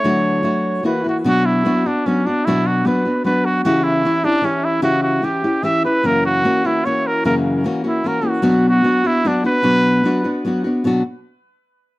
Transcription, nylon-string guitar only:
X:1
M:3/4
L:1/8
Q:1/4=150
K:D
V:1 name="Nylon-string guitar"
[D,F,A,DF]2 [F,A,DF]2 [E,^A,EF] [E,A,EF] | [K:Bm] [B,,F,B,DF]2 [F,B,DF] [B,DF] [F,B,DF] [B,DF] | [B,,F,B,DF]2 [F,B,DF] [B,DF] [F,B,DF]2 | [C,E,CEG]2 [E,CEG] [CEG] [E,CEG]2 |
[C,E,CEG]2 [E,CEG] [CEG] [E,CEG] [CEG] | [F,,C,E,^A,CF]2 [E,A,CF] [E,A,CF] [E,A,CF]2 | [F,,C,E,^A,CF]2 [E,A,CF] [E,A,CF] [E,A,CF] [E,A,CF] | [B,,F,B,DF]2 [F,B,DF] [B,DF] [F,B,DF] [B,DF] |
[B,,F,B,DF]2 [F,B,DF] [B,DF] [F,B,DF] [B,DF] | [B,,F,B,DF] z4 z |]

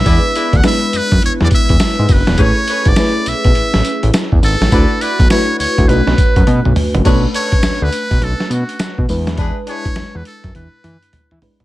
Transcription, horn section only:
X:1
M:4/4
L:1/16
Q:"Swing 16ths" 1/4=103
K:Bdor
V:1 name="Horn section"
[EGBd] z [EGBd] z12 z | [GABc] z [GABc] z12 z | [EFBd] z [EFBd] z12 z | [DABc] z [DABc] z12 z |
[DEGB] z [DEGB] z12 z |]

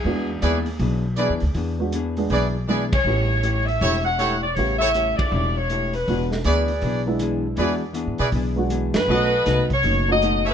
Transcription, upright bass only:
X:1
M:4/4
L:1/8
Q:"Swing" 1/4=159
K:Emix
V:1 name="Upright bass" clef=bass
E,,2 ^D,,2 B,,,2- (3B,,, E,, =D,, | E,,4 B,,,4 | A,,,4 E,,,4 | A,,,3 z E,,,4 |
E,,,2 D,,2 B,,,4 | E,,2- (3E,, G,, B,, B,,,3 F,, | B,,,2 =C,,2 F,,,4 |]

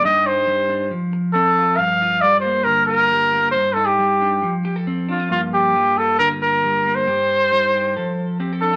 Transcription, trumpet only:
X:1
M:4/4
L:1/16
Q:"Swing 16ths" 1/4=136
K:Gm
V:1 name="Trumpet"
e2 c6 z4 A4 | f4 d2 c2 B2 B6 | c2 A G6 z4 z F2 | F2 G4 A2 B2 B4- B c- |
c8- c3 z3 A2 |]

